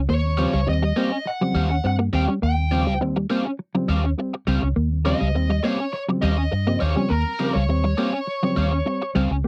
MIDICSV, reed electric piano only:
0, 0, Header, 1, 2, 480
1, 0, Start_track
1, 0, Tempo, 584795
1, 71, Time_signature, 4, 2, 24, 8
1, 7779, End_track
2, 0, Start_track
2, 0, Title_t, "Reed electric piano"
2, 0, Program_c, 0, 4
2, 203, Note_on_c, 0, 55, 42
2, 204, Note_on_c, 0, 60, 46
2, 246, Note_off_c, 0, 55, 0
2, 246, Note_off_c, 0, 60, 0
2, 314, Note_on_c, 0, 49, 74
2, 315, Note_on_c, 0, 53, 70
2, 315, Note_on_c, 0, 55, 70
2, 317, Note_on_c, 0, 60, 84
2, 427, Note_off_c, 0, 49, 0
2, 428, Note_off_c, 0, 53, 0
2, 428, Note_off_c, 0, 55, 0
2, 429, Note_off_c, 0, 60, 0
2, 557, Note_on_c, 0, 55, 69
2, 564, Note_on_c, 0, 60, 74
2, 669, Note_off_c, 0, 55, 0
2, 673, Note_off_c, 0, 60, 0
2, 795, Note_on_c, 0, 55, 77
2, 801, Note_on_c, 0, 60, 90
2, 908, Note_off_c, 0, 55, 0
2, 911, Note_off_c, 0, 60, 0
2, 1159, Note_on_c, 0, 49, 75
2, 1162, Note_on_c, 0, 53, 70
2, 1162, Note_on_c, 0, 55, 76
2, 1165, Note_on_c, 0, 60, 80
2, 1260, Note_off_c, 0, 49, 0
2, 1262, Note_off_c, 0, 53, 0
2, 1262, Note_off_c, 0, 55, 0
2, 1263, Note_off_c, 0, 60, 0
2, 1276, Note_on_c, 0, 55, 43
2, 1276, Note_on_c, 0, 60, 47
2, 1324, Note_off_c, 0, 55, 0
2, 1324, Note_off_c, 0, 60, 0
2, 1508, Note_on_c, 0, 55, 66
2, 1512, Note_on_c, 0, 60, 76
2, 1625, Note_off_c, 0, 55, 0
2, 1627, Note_off_c, 0, 60, 0
2, 1746, Note_on_c, 0, 55, 72
2, 1752, Note_on_c, 0, 60, 92
2, 1864, Note_off_c, 0, 55, 0
2, 1867, Note_off_c, 0, 60, 0
2, 2118, Note_on_c, 0, 55, 43
2, 2120, Note_on_c, 0, 60, 51
2, 2163, Note_off_c, 0, 55, 0
2, 2164, Note_off_c, 0, 60, 0
2, 2225, Note_on_c, 0, 49, 69
2, 2227, Note_on_c, 0, 53, 74
2, 2228, Note_on_c, 0, 55, 71
2, 2230, Note_on_c, 0, 60, 83
2, 2343, Note_off_c, 0, 49, 0
2, 2344, Note_off_c, 0, 53, 0
2, 2344, Note_off_c, 0, 55, 0
2, 2345, Note_off_c, 0, 60, 0
2, 2469, Note_on_c, 0, 55, 66
2, 2472, Note_on_c, 0, 60, 76
2, 2585, Note_off_c, 0, 55, 0
2, 2587, Note_off_c, 0, 60, 0
2, 2707, Note_on_c, 0, 55, 69
2, 2712, Note_on_c, 0, 60, 91
2, 2824, Note_off_c, 0, 55, 0
2, 2827, Note_off_c, 0, 60, 0
2, 3074, Note_on_c, 0, 49, 74
2, 3076, Note_on_c, 0, 53, 72
2, 3077, Note_on_c, 0, 55, 76
2, 3079, Note_on_c, 0, 60, 85
2, 3178, Note_off_c, 0, 49, 0
2, 3179, Note_off_c, 0, 53, 0
2, 3180, Note_off_c, 0, 55, 0
2, 3181, Note_off_c, 0, 60, 0
2, 3194, Note_on_c, 0, 55, 46
2, 3195, Note_on_c, 0, 60, 47
2, 3244, Note_off_c, 0, 55, 0
2, 3244, Note_off_c, 0, 60, 0
2, 3429, Note_on_c, 0, 55, 68
2, 3434, Note_on_c, 0, 60, 74
2, 3545, Note_off_c, 0, 55, 0
2, 3548, Note_off_c, 0, 60, 0
2, 3669, Note_on_c, 0, 55, 74
2, 3677, Note_on_c, 0, 60, 83
2, 3785, Note_off_c, 0, 55, 0
2, 3789, Note_off_c, 0, 60, 0
2, 4040, Note_on_c, 0, 55, 40
2, 4041, Note_on_c, 0, 60, 49
2, 4084, Note_off_c, 0, 55, 0
2, 4085, Note_off_c, 0, 60, 0
2, 4147, Note_on_c, 0, 49, 82
2, 4148, Note_on_c, 0, 53, 74
2, 4150, Note_on_c, 0, 55, 74
2, 4152, Note_on_c, 0, 60, 87
2, 4265, Note_off_c, 0, 49, 0
2, 4265, Note_off_c, 0, 53, 0
2, 4266, Note_off_c, 0, 55, 0
2, 4267, Note_off_c, 0, 60, 0
2, 4389, Note_on_c, 0, 55, 63
2, 4393, Note_on_c, 0, 60, 78
2, 4505, Note_off_c, 0, 55, 0
2, 4507, Note_off_c, 0, 60, 0
2, 4630, Note_on_c, 0, 55, 75
2, 4634, Note_on_c, 0, 60, 76
2, 4746, Note_off_c, 0, 55, 0
2, 4748, Note_off_c, 0, 60, 0
2, 4998, Note_on_c, 0, 49, 76
2, 5000, Note_on_c, 0, 53, 69
2, 5002, Note_on_c, 0, 55, 65
2, 5003, Note_on_c, 0, 60, 75
2, 5101, Note_off_c, 0, 49, 0
2, 5101, Note_off_c, 0, 53, 0
2, 5103, Note_off_c, 0, 55, 0
2, 5103, Note_off_c, 0, 60, 0
2, 5116, Note_on_c, 0, 55, 49
2, 5117, Note_on_c, 0, 60, 51
2, 5165, Note_off_c, 0, 55, 0
2, 5165, Note_off_c, 0, 60, 0
2, 5479, Note_on_c, 0, 49, 70
2, 5482, Note_on_c, 0, 53, 67
2, 5482, Note_on_c, 0, 55, 72
2, 5483, Note_on_c, 0, 60, 84
2, 5581, Note_off_c, 0, 49, 0
2, 5583, Note_off_c, 0, 53, 0
2, 5583, Note_off_c, 0, 55, 0
2, 5583, Note_off_c, 0, 60, 0
2, 5717, Note_on_c, 0, 49, 77
2, 5718, Note_on_c, 0, 53, 77
2, 5720, Note_on_c, 0, 55, 77
2, 5723, Note_on_c, 0, 60, 85
2, 5820, Note_off_c, 0, 49, 0
2, 5821, Note_off_c, 0, 53, 0
2, 5822, Note_off_c, 0, 55, 0
2, 5823, Note_off_c, 0, 60, 0
2, 5961, Note_on_c, 0, 55, 42
2, 5961, Note_on_c, 0, 60, 43
2, 6005, Note_off_c, 0, 55, 0
2, 6005, Note_off_c, 0, 60, 0
2, 6073, Note_on_c, 0, 49, 83
2, 6075, Note_on_c, 0, 53, 70
2, 6076, Note_on_c, 0, 55, 72
2, 6078, Note_on_c, 0, 60, 86
2, 6188, Note_off_c, 0, 49, 0
2, 6189, Note_off_c, 0, 53, 0
2, 6189, Note_off_c, 0, 55, 0
2, 6190, Note_off_c, 0, 60, 0
2, 6314, Note_on_c, 0, 55, 69
2, 6319, Note_on_c, 0, 60, 81
2, 6428, Note_off_c, 0, 55, 0
2, 6431, Note_off_c, 0, 60, 0
2, 6554, Note_on_c, 0, 55, 76
2, 6559, Note_on_c, 0, 60, 79
2, 6668, Note_off_c, 0, 55, 0
2, 6671, Note_off_c, 0, 60, 0
2, 6919, Note_on_c, 0, 49, 75
2, 6920, Note_on_c, 0, 53, 70
2, 6924, Note_on_c, 0, 55, 70
2, 6926, Note_on_c, 0, 60, 85
2, 7022, Note_off_c, 0, 49, 0
2, 7023, Note_off_c, 0, 53, 0
2, 7024, Note_off_c, 0, 55, 0
2, 7025, Note_off_c, 0, 60, 0
2, 7035, Note_on_c, 0, 55, 43
2, 7035, Note_on_c, 0, 60, 48
2, 7085, Note_off_c, 0, 55, 0
2, 7085, Note_off_c, 0, 60, 0
2, 7267, Note_on_c, 0, 55, 69
2, 7272, Note_on_c, 0, 60, 74
2, 7386, Note_off_c, 0, 55, 0
2, 7388, Note_off_c, 0, 60, 0
2, 7511, Note_on_c, 0, 55, 76
2, 7516, Note_on_c, 0, 60, 90
2, 7628, Note_off_c, 0, 55, 0
2, 7630, Note_off_c, 0, 60, 0
2, 7779, End_track
0, 0, End_of_file